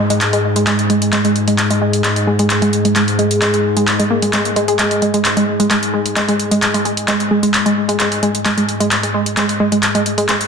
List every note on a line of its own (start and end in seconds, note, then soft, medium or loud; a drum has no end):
0.00 10.47 G#2 medium
0.00 10.47 G#3 medium
0.00 downlifter medium
0.10 0.16 G#3 medium
0.10 closed hi-hat medium
0.21 clap loud
0.21 closed hi-hat medium
0.33 0.39 G#3 medium
0.33 closed hi-hat medium
0.56 0.59 G#3 medium
0.56 closed hi-hat medium
0.67 0.73 G#3 medium
0.67 clap loud
0.67 closed hi-hat medium
0.79 closed hi-hat medium
0.90 0.96 G#3 medium
0.90 closed hi-hat medium
1.02 closed hi-hat medium
1.13 1.16 G#3 medium
1.13 clap loud
1.13 closed hi-hat medium
1.25 1.30 G#3 medium
1.25 closed hi-hat medium
1.36 closed hi-hat soft
1.48 1.53 G#3 medium
1.48 closed hi-hat medium
1.59 clap loud
1.59 closed hi-hat medium
1.70 1.74 G#3 medium
1.70 closed hi-hat medium
1.81 1.88 G#3 medium
1.93 closed hi-hat soft
2.04 2.11 G#3 medium
2.04 clap loud
2.04 closed hi-hat medium
2.16 closed hi-hat medium
2.27 2.31 G#3 medium
2.39 2.45 G#3 medium
2.39 closed hi-hat soft
2.50 clap loud
2.50 closed hi-hat medium
2.62 2.68 G#3 medium
2.62 closed hi-hat medium
2.73 closed hi-hat medium
2.85 2.88 G#3 medium
2.85 closed hi-hat medium
2.96 3.02 G#3 medium
2.96 clap loud
2.96 closed hi-hat medium
3.08 closed hi-hat soft
3.19 3.25 G#3 medium
3.19 closed hi-hat soft
3.31 closed hi-hat medium
3.42 3.45 G#3 medium
3.42 clap loud
3.42 closed hi-hat medium
3.54 3.59 G#3 medium
3.54 closed hi-hat soft
3.77 3.82 G#3 medium
3.77 closed hi-hat soft
3.88 clap loud
3.88 closed hi-hat medium
3.99 4.03 G#3 medium
3.99 closed hi-hat medium
4.10 4.17 A#3 medium
4.22 4.31 G#3 medium
4.22 closed hi-hat soft
4.33 4.37 G#3 loud
4.33 clap loud
4.33 closed hi-hat medium
4.45 closed hi-hat soft
4.56 4.60 G#3 loud
4.56 closed hi-hat soft
4.68 4.74 G#4 medium
4.68 closed hi-hat soft
4.79 4.85 G#3 medium
4.79 clap loud
4.79 closed hi-hat medium
4.91 closed hi-hat soft
5.02 5.06 G#3 medium
5.02 closed hi-hat soft
5.14 5.20 G#3 medium
5.14 closed hi-hat soft
5.25 clap loud
5.25 closed hi-hat medium
5.37 5.43 G#3 medium
5.37 closed hi-hat soft
5.60 5.63 G#3 medium
5.60 closed hi-hat soft
5.71 5.77 G#3 medium
5.71 clap loud
5.71 closed hi-hat medium
5.83 closed hi-hat soft
5.94 6.00 G#3 medium
6.06 closed hi-hat soft
6.16 6.20 G#3 medium
6.16 clap loud
6.16 closed hi-hat medium
6.28 6.34 G#3 medium
6.28 closed hi-hat soft
6.40 closed hi-hat soft
6.51 6.57 G#3 medium
6.51 closed hi-hat medium
6.62 clap loud
6.62 closed hi-hat medium
6.74 6.78 G#3 medium
6.74 closed hi-hat soft
6.85 6.91 G#3 medium
6.85 closed hi-hat soft
6.97 closed hi-hat medium
7.08 7.14 G#3 medium
7.08 clap loud
7.08 closed hi-hat medium
7.20 closed hi-hat soft
7.31 7.35 G#3 medium
7.43 7.49 G#3 medium
7.43 closed hi-hat soft
7.54 clap loud
7.54 closed hi-hat medium
7.66 7.72 G#3 medium
7.66 closed hi-hat soft
7.89 7.92 G#3 medium
7.89 closed hi-hat soft
8.00 8.06 G#3 medium
8.00 clap loud
8.00 closed hi-hat medium
8.12 closed hi-hat soft
8.23 8.29 G#3 medium
8.23 closed hi-hat soft
8.35 closed hi-hat soft
8.45 8.49 G#3 medium
8.45 clap loud
8.45 closed hi-hat medium
8.57 8.63 G#3 medium
8.57 closed hi-hat soft
8.69 closed hi-hat soft
8.80 8.86 G#3 medium
8.80 closed hi-hat soft
8.91 clap loud
8.91 closed hi-hat medium
9.03 9.07 G#3 medium
9.03 closed hi-hat medium
9.14 9.20 G#3 medium
9.26 closed hi-hat soft
9.37 9.43 G#3 medium
9.37 clap loud
9.37 closed hi-hat medium
9.49 closed hi-hat soft
9.60 9.64 G#3 medium
9.72 9.78 G#3 medium
9.72 closed hi-hat soft
9.83 clap loud
9.83 closed hi-hat medium
9.95 10.01 G#3 medium
9.95 closed hi-hat soft
10.06 closed hi-hat soft
10.18 10.21 G#3 medium
10.18 closed hi-hat soft
10.29 10.35 G#3 medium
10.29 clap loud
10.29 closed hi-hat medium
10.41 closed hi-hat medium